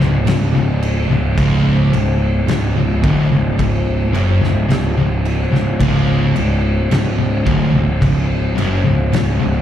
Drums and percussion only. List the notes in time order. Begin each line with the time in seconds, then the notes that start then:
0.00 snare
0.27 snare, crash
0.82 crash
1.38 kick, crash
1.93 crash
2.48 snare, crash
3.04 kick, crash
3.59 kick, crash
4.14 crash
4.44 snare
4.70 snare, crash
5.25 crash
5.55 snare
5.80 kick, crash
6.36 crash
6.91 snare, crash
7.47 kick, crash
8.02 kick, crash
8.58 crash
9.13 snare, crash